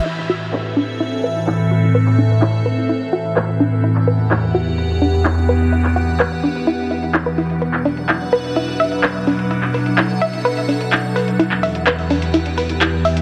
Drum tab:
HH |---x-ooxx--x--ox|x-oxxxoxxxoxx-ox|x-oxxooxxxoxx-ox|x-oxxxoxxxoxx-ox|
CP |-x--x-------x---|-x--x-------x---|-x--x-------x---|-x--x-------x---|

HH |x-oxxooxxxoxx-ox|x-oxxxoxxxoxx-ox|x-oxxooxxxoxx-ox|
CP |-x--x-------x---|-x--x-------x---|-x--x-------x---|